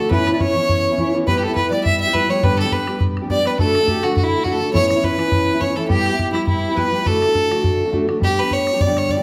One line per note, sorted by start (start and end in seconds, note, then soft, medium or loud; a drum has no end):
0.00 0.11 D4 medium
0.00 0.11 F#4 medium
0.00 0.10 A4 medium
0.00 0.11 A4 medium
0.09 0.32 A2 medium
0.09 0.33 E3 medium
0.09 0.33 B3 medium
0.09 0.33 C#4 medium
0.09 0.31 E4 medium
0.09 0.31 B4 medium
0.09 0.34 B4 loud
0.09 bodhran medium
0.27 bodhran medium
0.33 0.55 B3 soft
0.33 0.55 C#4 soft
0.33 0.55 E4 soft
0.33 0.43 B4 medium
0.33 0.39 D5 medium
0.39 1.09 C#5 medium
0.39 1.14 C#5 loud
0.39 bodhran medium
0.55 0.90 E3 medium
0.55 0.93 B3 medium
0.55 0.91 C#4 medium
0.55 0.89 E4 medium
0.69 bodhran medium
0.91 0.98 B3 soft
0.91 0.98 C#4 soft
0.91 0.97 E4 medium
0.98 1.12 E3 medium
0.98 1.13 B3 medium
0.98 1.13 C#4 medium
0.98 1.14 E4 medium
0.98 bodhran medium
1.13 1.26 E3 medium
1.13 1.25 B3 medium
1.13 1.27 C#4 medium
1.13 1.26 E4 medium
1.26 1.49 G3 medium
1.26 1.49 B3 medium
1.26 1.48 E4 medium
1.26 1.46 G4 medium
1.26 1.43 B4 medium
1.26 1.38 B4 loud
1.26 bodhran medium
1.39 1.44 G4 medium
1.43 1.55 A4 medium
1.43 1.56 A4 medium
1.43 bodhran medium
1.47 1.70 B3 soft
1.47 1.71 E4 soft
1.47 1.70 G4 medium
1.56 1.70 B4 medium
1.56 1.72 B4 medium
1.56 bodhran medium
1.71 2.06 G3 medium
1.71 2.07 B3 soft
1.71 2.07 E4 medium
1.71 2.05 G4 medium
1.71 1.83 D5 medium
1.71 1.85 D5 loud
1.71 bodhran medium
1.84 1.99 E5 loud
1.84 2.14 E5 loud
1.84 bodhran medium
2.00 2.15 E5 loud
2.07 2.13 B3 soft
2.07 2.13 E4 soft
2.07 2.13 G4 medium
2.13 2.28 G3 medium
2.13 2.29 B3 medium
2.13 2.30 E4 medium
2.13 2.30 G4 medium
2.13 2.31 B4 loud
2.13 2.29 B4 medium
2.13 bodhran medium
2.29 2.42 G3 medium
2.29 2.42 B3 medium
2.29 2.42 E4 medium
2.29 2.42 G4 medium
2.29 2.43 C#5 medium
2.29 2.45 C#5 medium
2.41 2.64 G2 medium
2.41 2.65 D3 medium
2.41 2.65 G3 medium
2.41 2.65 B3 medium
2.41 2.64 D4 medium
2.41 2.63 G4 medium
2.41 2.59 B4 medium
2.41 2.58 B4 loud
2.41 bodhran loud
2.59 2.74 A4 medium
2.59 2.72 A4 medium
2.59 bodhran medium
2.64 2.86 G3 soft
2.64 2.87 B3 soft
2.64 2.87 D4 soft
2.64 2.87 G4 medium
2.72 3.01 B4 medium
2.72 2.99 B4 medium
2.72 bodhran medium
2.87 3.23 G3 medium
2.87 3.23 B3 medium
2.87 3.22 D4 medium
2.87 3.21 G4 medium
2.87 bodhran medium
3.01 bodhran medium
3.17 bodhran medium
3.22 3.28 G3 soft
3.22 3.28 B3 soft
3.22 3.29 D4 medium
3.22 3.29 G4 soft
3.29 3.43 G3 medium
3.29 3.44 B3 medium
3.29 3.45 D4 medium
3.29 3.45 G4 medium
3.29 3.46 D5 medium
3.29 3.49 D5 loud
3.29 bodhran medium
3.44 3.57 G3 medium
3.44 3.58 B3 medium
3.44 3.58 D4 medium
3.44 3.59 G4 medium
3.44 3.59 B4 medium
3.44 bodhran medium
3.58 3.80 D3 medium
3.58 3.81 A3 medium
3.58 3.80 D4 medium
3.58 3.79 F#4 medium
3.58 3.88 A4 medium
3.58 4.05 A4 loud
3.58 bodhran medium
3.75 bodhran medium
3.80 4.02 A3 soft
3.80 4.03 D4 medium
3.80 4.03 F#4 soft
3.88 4.04 G4 medium
3.88 bodhran medium
4.02 4.38 D3 medium
4.02 4.39 A3 medium
4.02 4.38 D4 medium
4.02 4.16 F#4 medium
4.02 4.15 F#4 medium
4.02 4.36 F#4 medium
4.02 bodhran medium
4.16 4.24 F#4 medium
4.16 4.25 F#4 medium
4.16 bodhran medium
4.24 4.45 E4 medium
4.24 4.46 E4 medium
4.38 4.44 A3 soft
4.38 4.44 D4 soft
4.38 4.45 F#4 soft
4.44 4.59 D3 medium
4.44 4.60 A3 medium
4.44 4.60 D4 medium
4.44 4.54 F#4 medium
4.44 4.61 F#4 medium
4.44 4.54 F#4 medium
4.44 bodhran medium
4.53 4.73 A4 medium
4.53 4.75 A4 medium
4.60 4.73 D3 medium
4.60 4.73 A3 medium
4.60 4.73 D4 medium
4.60 4.73 F#4 medium
4.72 4.96 A2 medium
4.72 4.96 E3 medium
4.72 4.96 B3 medium
4.72 4.96 C#4 medium
4.72 4.94 E4 medium
4.72 4.89 C#5 loud
4.72 4.89 C#5 medium
4.72 bodhran medium
4.89 5.06 C#5 medium
4.89 5.04 C#5 medium
4.89 bodhran medium
4.96 5.17 B3 soft
4.96 5.17 C#4 soft
4.96 5.18 E4 medium
5.04 5.63 B4 medium
5.04 5.62 B4 loud
5.04 bodhran medium
5.17 5.53 E3 medium
5.17 5.54 B3 medium
5.17 5.53 C#4 medium
5.17 5.52 E4 medium
5.17 bodhran medium
5.32 bodhran medium
5.53 5.59 B3 soft
5.53 5.59 C#4 soft
5.53 5.60 E4 medium
5.58 5.75 E3 medium
5.58 5.75 B3 medium
5.58 5.76 C#4 medium
5.58 5.77 E4 medium
5.58 5.78 C#5 medium
5.58 5.76 C#5 medium
5.58 bodhran medium
5.76 5.88 E3 medium
5.76 5.88 B3 medium
5.76 5.89 C#4 medium
5.76 5.88 E4 medium
5.76 5.87 A4 medium
5.76 5.90 A4 medium
5.88 6.12 G3 medium
5.88 6.12 B3 medium
5.88 6.11 E4 medium
5.88 6.31 G4 loud
5.88 6.36 G4 medium
5.88 6.10 G4 medium
5.88 bodhran medium
6.06 bodhran medium
6.11 6.33 B3 soft
6.11 6.33 E4 medium
6.11 6.34 G4 medium
6.19 bodhran medium
6.33 6.69 G3 medium
6.33 6.70 B3 medium
6.33 6.46 E4 medium
6.33 6.69 E4 medium
6.33 6.46 E4 medium
6.33 6.68 G4 medium
6.33 bodhran medium
6.47 6.78 E4 medium
6.47 bodhran medium
6.69 6.76 B3 soft
6.69 6.77 E4 soft
6.69 6.76 G4 soft
6.75 6.91 G3 medium
6.75 6.91 B3 medium
6.75 6.92 E4 medium
6.75 6.93 G4 medium
6.75 7.06 B4 medium
6.75 7.08 B4 loud
6.75 bodhran medium
6.92 7.04 G3 soft
6.92 7.05 B3 medium
6.92 7.05 E4 medium
6.92 7.06 G4 medium
7.05 7.28 D3 medium
7.05 7.28 A3 medium
7.05 7.27 D4 medium
7.05 7.26 F#4 medium
7.05 7.94 A4 loud
7.05 7.90 A4 medium
7.05 bodhran medium
7.22 bodhran medium
7.27 7.49 A3 soft
7.27 7.50 D4 soft
7.27 7.50 F#4 soft
7.35 bodhran medium
7.50 7.91 D3 medium
7.50 7.86 A3 medium
7.50 7.87 D4 medium
7.50 7.84 F#4 medium
7.50 bodhran medium
7.64 bodhran medium
7.85 7.91 A3 soft
7.85 7.92 D4 soft
7.85 7.93 F#4 medium
7.92 8.06 D3 medium
7.92 8.07 A3 medium
7.92 8.08 D4 medium
7.92 8.08 F#4 medium
7.92 bodhran medium
8.07 8.19 D3 medium
8.07 8.20 A3 medium
8.07 8.20 D4 medium
8.07 8.21 F#4 medium
8.07 bodhran medium
8.20 8.43 G3 medium
8.20 8.43 B3 medium
8.20 8.42 D4 medium
8.20 8.42 G4 medium
8.20 8.41 G4 loud
8.20 bodhran medium
8.39 8.72 G4 medium
8.39 8.54 B4 loud
8.43 8.74 G3 soft
8.43 8.73 B3 soft
8.43 8.73 D4 soft
8.51 8.82 C#5 loud
8.51 bodhran medium
8.67 bodhran medium
8.73 8.87 G3 medium
8.73 8.87 B3 soft
8.73 8.86 D4 medium
8.73 8.86 G4 medium
8.81 9.00 D5 loud
8.81 bodhran medium
8.87 9.18 G2 medium
8.87 9.23 D3 medium
8.87 9.18 G3 medium
8.87 9.17 B3 medium
8.87 9.18 D4 medium
8.87 9.16 G4 medium
8.97 9.12 C#5 loud
8.97 bodhran medium
9.09 9.23 D5 medium
9.09 bodhran medium
9.17 9.23 B3 soft
9.17 9.23 D4 medium
9.17 9.23 G4 soft